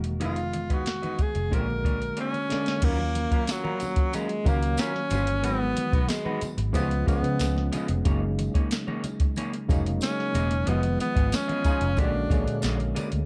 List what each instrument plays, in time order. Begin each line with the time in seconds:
Already playing: fingered electric bass E1, tine electric piano D#3 G#3 A#3 F#4
0.04 muted clean electric guitar stroke, closed hi-hat
0.20 fingered electric bass F1, tine electric piano D#3 G#3 B3 F5, clean electric guitar D#4 G#4 B4 D#5, closed hi-hat, muted conga, low conga
0.24 alto saxophone F4
0.36 muted clean electric guitar stroke, closed hi-hat, muted conga
0.53 muted clean electric guitar stroke, closed hi-hat, high conga
0.70 clean electric guitar D#4 G#4 B4 D#5, alto saxophone F#4, kick, closed hi-hat
0.86 muted clean electric guitar stroke, snare, closed hi-hat, muted conga
1.02 clean electric guitar D#4 G#4 B4 D#5, closed hi-hat, muted conga, high conga
1.19 alto saxophone G#4, muted clean electric guitar stroke, muted fingered electric bass stroke, kick, closed hi-hat, low conga
1.35 fingered electric bass F1, muted clean electric guitar stroke, closed hi-hat
1.50 fingered electric bass A#1, tine electric piano D3 G#3 A#3 F4, clean electric guitar A#3 D4 G#4 C#5, kick, closed hi-hat, muted conga
1.55 alto saxophone A#4
1.60 tine electric piano F#4
1.68 muted clean electric guitar stroke, muted conga
1.84 clean electric guitar A#3 D4 G#4 C#5, kick, closed hi-hat, high conga
2.00 muted clean electric guitar stroke, closed hi-hat
2.17 clean electric guitar A#3 D4 G#4 C#5, closed hi-hat, muted conga
2.21 alto saxophone C#4
2.33 muted clean electric guitar stroke, closed hi-hat, muted conga
2.49 tine electric piano D3 G#3 A#3 C#4, clean electric guitar A#3 D4 G#4 D5, snare, closed hi-hat, low conga
2.66 muted clean electric guitar stroke, snare, closed hi-hat
2.81 fingered electric bass D#2, tine electric piano D#3 F#3 A#3 C#4 D#4, clean electric guitar F#3 C#4 F4 A#4, alto saxophone A#3, kick, closed hi-hat, crash, muted conga
2.91 tine electric piano F4
2.99 muted clean electric guitar stroke, muted conga
3.15 muted clean electric guitar stroke, closed hi-hat, high conga
3.31 clean electric guitar F#3 C#4 F4 A#4, muted fingered electric bass stroke, kick, closed hi-hat
3.47 alto saxophone F#3, muted clean electric guitar stroke, snare, closed hi-hat, tambourine
3.64 clean electric guitar F#3 C#4 F4 A#4, high conga
3.80 muted clean electric guitar stroke, closed hi-hat, tambourine, low conga
3.96 muted clean electric guitar stroke, kick, closed hi-hat
4.12 clean electric guitar F#3 C#4 F4 A#4, alto saxophone G#3, closed hi-hat, tambourine, muted conga, high conga
4.29 muted clean electric guitar stroke, closed hi-hat
4.44 fingered electric bass C#2, tine electric piano D#3 F#3 A#3 C#4 F#4, clean electric guitar F#3 C#4 F4 A#4, kick, closed hi-hat, tambourine, high conga
4.48 alto saxophone A#3
4.62 muted clean electric guitar stroke, closed hi-hat
4.77 clean electric guitar F#3 C#4 F4 A#4, alto saxophone C#4, snare, closed hi-hat, tambourine
4.94 muted clean electric guitar stroke, snare
5.10 fingered electric bass G1, clean electric guitar F#3 C#4 F4 C5, closed hi-hat, tambourine, low conga
5.27 muted clean electric guitar stroke, closed hi-hat
5.42 fingered electric bass G#1, tine electric piano D#3 F#3 G#3 B3 F#4, clean electric guitar G#3 D#4 F#4 B4, alto saxophone B3, closed hi-hat, tambourine, muted conga
5.60 muted clean electric guitar stroke
5.76 muted clean electric guitar stroke, closed hi-hat, tambourine, high conga
5.92 fingered electric bass B1, clean electric guitar G#3 D#4 F#4 B4, kick, closed hi-hat
6.09 alto saxophone G#3, muted clean electric guitar stroke, snare, closed hi-hat, tambourine, muted conga
6.25 clean electric guitar G#3 D#4 F#4 B4, muted conga, high conga
6.41 muted clean electric guitar stroke, muted fingered electric bass stroke, closed hi-hat, tambourine, low conga
6.58 fingered electric bass G#1, muted clean electric guitar stroke, closed hi-hat
6.73 fingered electric bass C#2, tine electric piano C#3 F3 G#3 B3 F4, clean electric guitar B3 F4 G#4 C#5, alto saxophone B3, kick, closed hi-hat, tambourine, high conga
6.90 muted clean electric guitar stroke, closed hi-hat
7.06 fingered electric bass C#2, tine electric piano C#3 F3 G#3 B3 C#4, clean electric guitar B3 F4 G#4 C#5, alto saxophone B3, kick, closed hi-hat, tambourine, high conga
7.23 fingered electric bass C#3, muted clean electric guitar stroke, closed hi-hat
7.39 fingered electric bass C#2, muted clean electric guitar stroke, snare, closed hi-hat, tambourine, muted conga
7.56 muted clean electric guitar stroke, snare, muted conga
7.72 clean electric guitar B3 F4 G#4 D#5, closed hi-hat, tambourine, low conga
7.88 fingered electric bass F1, muted clean electric guitar stroke, closed hi-hat
8.05 fingered electric bass F#1, tine electric piano C#3 F#3 G#3 A#3 D#4, clean electric guitar A#3 D#4 G#4 C#5, kick, closed hi-hat, tambourine, muted conga
8.22 muted clean electric guitar stroke
8.39 muted clean electric guitar stroke, closed hi-hat, tambourine, high conga
8.54 clean electric guitar A#3 D#4 G#4 C#5, muted fingered electric bass stroke, kick, closed hi-hat
8.71 muted clean electric guitar stroke, snare, closed hi-hat, tambourine
8.87 clean electric guitar A#3 D#4 G#4 C#5, high conga
9.04 muted clean electric guitar stroke, closed hi-hat, tambourine, low conga
9.20 muted clean electric guitar stroke, kick, closed hi-hat
9.36 clean electric guitar A#3 D#4 G#4 C#5, closed hi-hat, tambourine, high conga
9.53 muted clean electric guitar stroke, closed hi-hat
9.68 fingered electric bass F1, tine electric piano C#3 F#3 G#3 A#3 D#4, clean electric guitar A#3 D#4 G#4 C#5, kick, closed hi-hat, tambourine, high conga
9.86 muted clean electric guitar stroke, closed hi-hat
10.01 alto saxophone C#4, snare, closed hi-hat, tambourine, muted conga
10.18 muted clean electric guitar stroke, snare
10.34 fingered electric bass E1, clean electric guitar A#3 D#4 G#4 D#5, closed hi-hat, tambourine, low conga
10.50 muted clean electric guitar stroke, closed hi-hat
10.66 fingered electric bass F1, tine electric piano D#3 F3 G#3 B3 F4, clean electric guitar B3 F4 G#4 D#5, alto saxophone B3, closed hi-hat, muted conga, low conga
10.83 muted clean electric guitar stroke, closed hi-hat, muted conga
10.99 alto saxophone B3, muted clean electric guitar stroke, closed hi-hat, tambourine, high conga
11.15 fingered electric bass G#1, clean electric guitar B3 F4 G#4 D#5, kick, closed hi-hat
11.32 alto saxophone C#4, muted clean electric guitar stroke, snare, closed hi-hat, tambourine
11.48 clean electric guitar B3 F4 G#4 D#5, closed hi-hat, high conga
11.64 horn section D#4 F4 G#4, muted clean electric guitar stroke, muted fingered electric bass stroke, kick, closed hi-hat, tambourine, low conga
11.81 fingered electric bass F1, muted clean electric guitar stroke, closed hi-hat
11.97 fingered electric bass A#1, tine electric piano D3 G#3 A#3 C#4 F#4, clean electric guitar A#3 D4 G#4 C#5, alto saxophone D4, kick, closed hi-hat, tambourine, muted conga, high conga
12.13 muted clean electric guitar stroke
12.29 fingered electric bass A#1, tine electric piano D3 G#3 A#3 G#4 C#5, clean electric guitar A#3 D4 G#4 C#5, kick, closed hi-hat, tambourine, high conga
12.46 fingered electric bass A#2, muted clean electric guitar stroke, closed hi-hat
12.62 fingered electric bass A#1, clean electric guitar A#3 D4 G#4 C#5, snare, closed hi-hat, tambourine, muted conga
12.79 muted clean electric guitar stroke, closed hi-hat, muted conga
12.95 clean electric guitar A#3 D4 G#4 D5, closed hi-hat, tambourine, low conga
13.11 fingered electric bass D2, muted clean electric guitar stroke, closed hi-hat